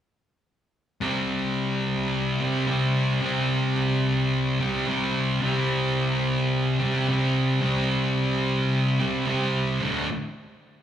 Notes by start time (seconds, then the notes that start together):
1.01 C3 G3 C4
2.40 C3 G3 C4
2.67 C3 G3 C4
3.22 C3 G3 C4
4.60 C3 G3 C4
4.87 C3 G3 C4
5.41 C3 G3
5.45 C4
6.79 C3 G3 C4
7.08 C3 G3 C4
7.61 C3 G3 C4
9.00 C3 G3 C4
9.27 C3 G3 C4
9.82 D2 A2 D3